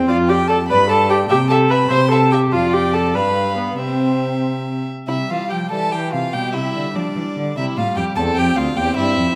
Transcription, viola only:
0, 0, Header, 1, 2, 480
1, 0, Start_track
1, 0, Key_signature, 0, "major"
1, 0, Tempo, 407056
1, 106, Time_signature, 6, 3, 24, 8
1, 3466, Tempo, 429492
1, 5866, Tempo, 415800
1, 7306, Tempo, 405680
1, 10877, End_track
2, 0, Start_track
2, 0, Title_t, "Viola"
2, 0, Program_c, 0, 41
2, 96, Note_on_c, 0, 65, 94
2, 343, Note_on_c, 0, 67, 81
2, 361, Note_off_c, 0, 65, 0
2, 571, Note_off_c, 0, 67, 0
2, 578, Note_on_c, 0, 69, 86
2, 672, Note_off_c, 0, 69, 0
2, 823, Note_on_c, 0, 71, 87
2, 1055, Note_off_c, 0, 71, 0
2, 1060, Note_on_c, 0, 69, 76
2, 1293, Note_off_c, 0, 69, 0
2, 1299, Note_on_c, 0, 67, 80
2, 1394, Note_off_c, 0, 67, 0
2, 1537, Note_on_c, 0, 67, 91
2, 1632, Note_off_c, 0, 67, 0
2, 1772, Note_on_c, 0, 69, 83
2, 2006, Note_on_c, 0, 71, 82
2, 2024, Note_off_c, 0, 69, 0
2, 2244, Note_off_c, 0, 71, 0
2, 2252, Note_on_c, 0, 72, 92
2, 2481, Note_off_c, 0, 72, 0
2, 2488, Note_on_c, 0, 69, 80
2, 2736, Note_on_c, 0, 67, 74
2, 2754, Note_off_c, 0, 69, 0
2, 2975, Note_on_c, 0, 65, 89
2, 2992, Note_off_c, 0, 67, 0
2, 3224, Note_on_c, 0, 67, 76
2, 3242, Note_off_c, 0, 65, 0
2, 3471, Note_on_c, 0, 69, 75
2, 3488, Note_off_c, 0, 67, 0
2, 3696, Note_on_c, 0, 71, 71
2, 3712, Note_off_c, 0, 69, 0
2, 4171, Note_off_c, 0, 71, 0
2, 4178, Note_on_c, 0, 59, 60
2, 4412, Note_on_c, 0, 60, 65
2, 4429, Note_off_c, 0, 59, 0
2, 5136, Note_off_c, 0, 60, 0
2, 5859, Note_on_c, 0, 55, 39
2, 6587, Note_on_c, 0, 52, 39
2, 6605, Note_off_c, 0, 55, 0
2, 7299, Note_on_c, 0, 55, 47
2, 7316, Note_off_c, 0, 52, 0
2, 8758, Note_off_c, 0, 55, 0
2, 8765, Note_on_c, 0, 55, 52
2, 9486, Note_on_c, 0, 60, 49
2, 9503, Note_off_c, 0, 55, 0
2, 10184, Note_off_c, 0, 60, 0
2, 10191, Note_on_c, 0, 60, 59
2, 10877, Note_off_c, 0, 60, 0
2, 10877, End_track
0, 0, End_of_file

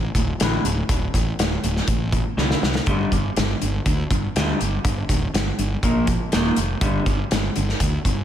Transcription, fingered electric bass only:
0, 0, Header, 1, 2, 480
1, 0, Start_track
1, 0, Tempo, 493421
1, 874, Time_signature, 4, 2, 24, 8
1, 8018, End_track
2, 0, Start_track
2, 0, Title_t, "Fingered electric bass"
2, 0, Program_c, 0, 33
2, 140, Note_on_c, 0, 26, 78
2, 301, Note_off_c, 0, 26, 0
2, 397, Note_on_c, 0, 33, 84
2, 553, Note_off_c, 0, 33, 0
2, 627, Note_on_c, 0, 26, 82
2, 787, Note_off_c, 0, 26, 0
2, 866, Note_on_c, 0, 26, 83
2, 1026, Note_off_c, 0, 26, 0
2, 1110, Note_on_c, 0, 33, 78
2, 1269, Note_off_c, 0, 33, 0
2, 1354, Note_on_c, 0, 26, 76
2, 1512, Note_off_c, 0, 26, 0
2, 1592, Note_on_c, 0, 26, 88
2, 1751, Note_off_c, 0, 26, 0
2, 1826, Note_on_c, 0, 33, 89
2, 2144, Note_off_c, 0, 33, 0
2, 2309, Note_on_c, 0, 36, 86
2, 2469, Note_off_c, 0, 36, 0
2, 2552, Note_on_c, 0, 36, 76
2, 2711, Note_off_c, 0, 36, 0
2, 2791, Note_on_c, 0, 31, 88
2, 2950, Note_off_c, 0, 31, 0
2, 3035, Note_on_c, 0, 31, 77
2, 3193, Note_off_c, 0, 31, 0
2, 3280, Note_on_c, 0, 31, 88
2, 3436, Note_off_c, 0, 31, 0
2, 3523, Note_on_c, 0, 31, 80
2, 3678, Note_off_c, 0, 31, 0
2, 3759, Note_on_c, 0, 38, 82
2, 3916, Note_off_c, 0, 38, 0
2, 3994, Note_on_c, 0, 31, 72
2, 4152, Note_off_c, 0, 31, 0
2, 4240, Note_on_c, 0, 38, 75
2, 4396, Note_off_c, 0, 38, 0
2, 4484, Note_on_c, 0, 31, 74
2, 4639, Note_off_c, 0, 31, 0
2, 4713, Note_on_c, 0, 31, 83
2, 4872, Note_off_c, 0, 31, 0
2, 4953, Note_on_c, 0, 26, 83
2, 5111, Note_off_c, 0, 26, 0
2, 5193, Note_on_c, 0, 31, 82
2, 5352, Note_off_c, 0, 31, 0
2, 5434, Note_on_c, 0, 31, 80
2, 5592, Note_off_c, 0, 31, 0
2, 5672, Note_on_c, 0, 34, 90
2, 5987, Note_off_c, 0, 34, 0
2, 6163, Note_on_c, 0, 27, 83
2, 6318, Note_off_c, 0, 27, 0
2, 6393, Note_on_c, 0, 29, 68
2, 6550, Note_off_c, 0, 29, 0
2, 6631, Note_on_c, 0, 31, 79
2, 6789, Note_off_c, 0, 31, 0
2, 6867, Note_on_c, 0, 31, 84
2, 7026, Note_off_c, 0, 31, 0
2, 7120, Note_on_c, 0, 31, 84
2, 7275, Note_off_c, 0, 31, 0
2, 7363, Note_on_c, 0, 31, 81
2, 7517, Note_off_c, 0, 31, 0
2, 7585, Note_on_c, 0, 38, 96
2, 7745, Note_off_c, 0, 38, 0
2, 7832, Note_on_c, 0, 31, 73
2, 7989, Note_off_c, 0, 31, 0
2, 8018, End_track
0, 0, End_of_file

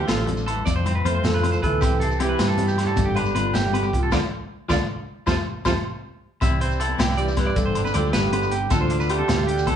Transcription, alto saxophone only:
0, 0, Header, 1, 2, 480
1, 0, Start_track
1, 0, Key_signature, 0, "major"
1, 0, Tempo, 383142
1, 2278, Time_signature, 12, 3, 24, 8
1, 12226, End_track
2, 0, Start_track
2, 0, Title_t, "Alto saxophone"
2, 0, Program_c, 0, 65
2, 95, Note_on_c, 0, 69, 76
2, 550, Note_off_c, 0, 69, 0
2, 1315, Note_on_c, 0, 72, 95
2, 1539, Note_off_c, 0, 72, 0
2, 1563, Note_on_c, 0, 69, 101
2, 2008, Note_off_c, 0, 69, 0
2, 2048, Note_on_c, 0, 69, 100
2, 2714, Note_off_c, 0, 69, 0
2, 2780, Note_on_c, 0, 67, 90
2, 3442, Note_off_c, 0, 67, 0
2, 3504, Note_on_c, 0, 67, 87
2, 4209, Note_on_c, 0, 65, 79
2, 4227, Note_off_c, 0, 67, 0
2, 4476, Note_on_c, 0, 67, 86
2, 4495, Note_off_c, 0, 65, 0
2, 4945, Note_on_c, 0, 65, 83
2, 4964, Note_off_c, 0, 67, 0
2, 5150, Note_off_c, 0, 65, 0
2, 5158, Note_on_c, 0, 65, 86
2, 5233, Note_off_c, 0, 65, 0
2, 5874, Note_on_c, 0, 65, 90
2, 5949, Note_off_c, 0, 65, 0
2, 6597, Note_on_c, 0, 65, 82
2, 6672, Note_off_c, 0, 65, 0
2, 7085, Note_on_c, 0, 65, 85
2, 7160, Note_off_c, 0, 65, 0
2, 9002, Note_on_c, 0, 67, 77
2, 9246, Note_on_c, 0, 71, 82
2, 9264, Note_off_c, 0, 67, 0
2, 9475, Note_on_c, 0, 69, 85
2, 9494, Note_off_c, 0, 71, 0
2, 9957, Note_off_c, 0, 69, 0
2, 9981, Note_on_c, 0, 69, 84
2, 10198, Note_on_c, 0, 67, 86
2, 10217, Note_off_c, 0, 69, 0
2, 10737, Note_off_c, 0, 67, 0
2, 10929, Note_on_c, 0, 65, 86
2, 11368, Note_off_c, 0, 65, 0
2, 11403, Note_on_c, 0, 67, 98
2, 12226, Note_off_c, 0, 67, 0
2, 12226, End_track
0, 0, End_of_file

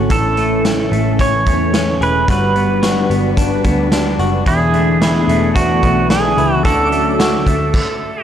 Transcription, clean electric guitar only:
0, 0, Header, 1, 2, 480
1, 0, Start_track
1, 0, Key_signature, 3, "major"
1, 0, Tempo, 545455
1, 92, Time_signature, 4, 2, 24, 8
1, 7244, End_track
2, 0, Start_track
2, 0, Title_t, "Clean electric guitar"
2, 0, Program_c, 0, 27
2, 0, Note_on_c, 0, 50, 72
2, 0, Note_on_c, 0, 57, 52
2, 0, Note_on_c, 0, 61, 52
2, 0, Note_on_c, 0, 66, 54
2, 89, Note_on_c, 0, 45, 71
2, 90, Note_off_c, 0, 50, 0
2, 91, Note_off_c, 0, 66, 0
2, 329, Note_off_c, 0, 57, 0
2, 333, Note_on_c, 0, 57, 50
2, 799, Note_off_c, 0, 57, 0
2, 809, Note_on_c, 0, 57, 52
2, 1049, Note_off_c, 0, 61, 0
2, 1052, Note_on_c, 0, 61, 51
2, 1283, Note_off_c, 0, 57, 0
2, 1293, Note_on_c, 0, 57, 47
2, 1521, Note_off_c, 0, 61, 0
2, 1531, Note_on_c, 0, 61, 53
2, 1770, Note_on_c, 0, 68, 58
2, 2010, Note_off_c, 0, 45, 0
2, 2011, Note_off_c, 0, 68, 0
2, 2012, Note_on_c, 0, 55, 75
2, 2018, Note_on_c, 0, 66, 61
2, 2059, Note_off_c, 0, 61, 0
2, 2060, Note_off_c, 0, 57, 0
2, 2249, Note_on_c, 0, 59, 48
2, 2477, Note_off_c, 0, 66, 0
2, 2487, Note_on_c, 0, 66, 62
2, 2725, Note_off_c, 0, 59, 0
2, 2729, Note_on_c, 0, 59, 58
2, 2968, Note_on_c, 0, 62, 53
2, 3203, Note_off_c, 0, 59, 0
2, 3206, Note_on_c, 0, 59, 51
2, 3445, Note_off_c, 0, 62, 0
2, 3448, Note_on_c, 0, 62, 54
2, 3681, Note_off_c, 0, 66, 0
2, 3691, Note_on_c, 0, 66, 59
2, 3931, Note_off_c, 0, 55, 0
2, 3931, Note_off_c, 0, 66, 0
2, 3933, Note_on_c, 0, 40, 75
2, 3940, Note_on_c, 0, 64, 65
2, 4170, Note_off_c, 0, 59, 0
2, 4174, Note_on_c, 0, 57, 54
2, 4404, Note_off_c, 0, 64, 0
2, 4415, Note_on_c, 0, 64, 65
2, 4441, Note_off_c, 0, 62, 0
2, 4657, Note_off_c, 0, 57, 0
2, 4660, Note_on_c, 0, 57, 58
2, 4900, Note_on_c, 0, 62, 54
2, 5129, Note_off_c, 0, 57, 0
2, 5133, Note_on_c, 0, 57, 54
2, 5368, Note_off_c, 0, 62, 0
2, 5371, Note_on_c, 0, 62, 56
2, 5602, Note_off_c, 0, 64, 0
2, 5613, Note_on_c, 0, 64, 59
2, 5852, Note_off_c, 0, 64, 0
2, 5853, Note_off_c, 0, 40, 0
2, 5853, Note_on_c, 0, 50, 75
2, 5858, Note_on_c, 0, 66, 62
2, 6086, Note_off_c, 0, 57, 0
2, 6090, Note_on_c, 0, 57, 55
2, 6320, Note_off_c, 0, 66, 0
2, 6331, Note_on_c, 0, 66, 63
2, 6570, Note_off_c, 0, 57, 0
2, 6574, Note_on_c, 0, 57, 59
2, 6859, Note_off_c, 0, 66, 0
2, 6860, Note_off_c, 0, 50, 0
2, 7244, Note_off_c, 0, 57, 0
2, 7244, Note_off_c, 0, 62, 0
2, 7244, End_track
0, 0, End_of_file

